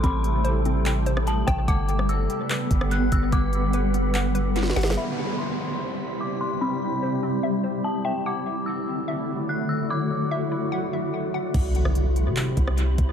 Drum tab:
CC |------------------------------------------------------------------------------------------------|------------------------------------------------------------------------------------------------|------------------------------------------------------------------------------------------------|------------------------------------------------------------------------------------------------|
HH |x-----------x-----------x-----------x-----------x-----------x-----------x-----------x-----------|x-----------x-----------x-----------x-----------x-----------x-----------x-----------x-----------|x-----------x-----------x-----------x-----------x-----------x-----------x-----------x--x--x--x--|------------------------------------------------------------------------------------------------|
CP |------------------------------------------------x-----------------------------------------------|------------------------------------------------x-----------------------------------------------|------------------------------------------------x-----------------------------------------------|------------------------------------------------------------------------------------------------|
SD |------------------------------------------------------------------r-----------------r-----------|------------------r-----------------------------------------------r-----------------------------|------------------------------------------------------------------------o---o---o---o---o---o---|------------------------------------------------------------------------------------------------|
BD |o-----------------------------------------------------------------------------------o-----------|o-----------------------------------------------------------o-----------------------o-----------|o-----------------------------------------------------------------------------------------------|------------------------------------------------------------------------------------------------|

CC |------------------------------------------------------------------------------------------------|------------------------------------------------------------------------------------------------|------------------------------------------------------------------------------------------------|x-----------------------------------------------------------------------------------------------|
HH |------------------------------------------------------------------------------------------------|------------------------------------------------------------------------------------------------|------------------------------------------------------------------------------------------------|x-----------x-----------x-----------x-----------x-----------x-----------x-----------x-----------|
CP |------------------------------------------------------------------------------------------------|------------------------------------------------------------------------------------------------|------------------------------------------------------------------------------------------------|------------------------------------------------x-----------------------------------------------|
SD |------------------------------------------------------------------------------------------------|------------------------------------------------------------------------------------------------|------------------------------------------------------------------------------------------------|------------------r-----------------------------------------------r-----------------------------|
BD |------------------------------------------------------------------------------------------------|------------------------------------------------------------------------------------------------|------------------------------------------------------------------------------------------------|o-----------------------------------------------------------o-----------------------o-----------|